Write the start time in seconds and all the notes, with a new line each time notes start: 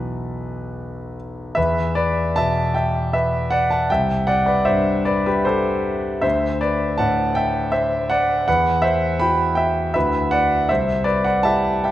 Already playing: B1 E3 B3 F#4 A4 B4
1.55 E2 B4 E5
1.95 B4 D5
2.36 B2 E5 A5
2.74 E5 G5
3.13 B4 E5
3.51 D5 F#5
3.71 F#5 A5
3.90 C2 E5 G5
4.27 D5 F#5
4.46 B4 D5
4.65 G2 C5 E5
5.05 B4 D5
5.26 G4 B4
5.45 A4 C5
6.21 D2 C5 E5
6.61 B4 D5
6.98 A2 F#5 A5
7.35 E5 G5
7.72 C5 E5
8.10 D5 F#5
8.48 E2 B4 F#5
8.82 C5 E5
9.20 E4 F#4 G5 B5
9.55 E5 G5
9.94 D2 E4 F#4 B4 E5
10.31 D5 F#5
10.69 C2 C5 E5
11.04 B4 D5
11.24 D5 F#5
11.43 E4 G4 E5 A5
11.84 E5 G5